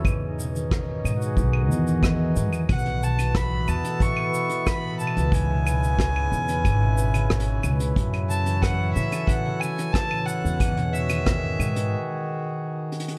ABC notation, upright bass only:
X:1
M:4/4
L:1/16
Q:1/4=91
K:E
V:1 name="Upright bass" clef=bass
E,,6 G,,2 B,,,2 E,,4 G,, E,, | B,,,6 E,, z8 C,,- | C,,6 E,,2 G,,,6 C,,2 | F,,6 A,, z8 E,,- |
E,,6 G,,2 z8 |]